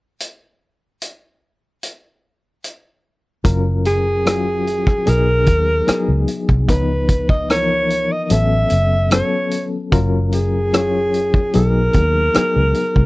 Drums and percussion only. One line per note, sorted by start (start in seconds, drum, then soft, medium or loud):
0.20 closed hi-hat soft
1.02 closed hi-hat soft
1.83 closed hi-hat soft
2.64 closed hi-hat soft
3.45 kick medium
3.45 closed hi-hat medium
3.85 closed hi-hat medium
4.26 cross-stick loud
4.26 closed hi-hat medium
4.67 closed hi-hat medium
4.87 kick medium
4.87 cross-stick soft
5.07 closed hi-hat medium
5.46 kick medium
5.46 closed hi-hat medium
5.88 cross-stick medium
5.88 closed hi-hat medium
6.28 closed hi-hat medium
6.49 kick medium
6.69 kick loud
6.69 closed hi-hat medium
7.09 kick medium
7.09 closed hi-hat medium
7.29 kick medium
7.50 cross-stick medium
7.50 closed hi-hat medium
7.90 closed hi-hat medium
8.30 closed hi-hat medium
8.70 closed hi-hat medium
9.11 cross-stick loud
9.11 closed hi-hat medium
9.51 closed hi-hat medium
9.92 kick loud
9.92 closed hi-hat medium
10.32 closed hi-hat medium
10.74 cross-stick loud
10.74 closed hi-hat medium
11.14 closed hi-hat medium
11.34 kick medium
11.53 closed hi-hat medium
11.93 kick medium
11.93 closed hi-hat medium
12.34 cross-stick loud
12.34 closed hi-hat medium
12.74 closed hi-hat medium
12.96 kick medium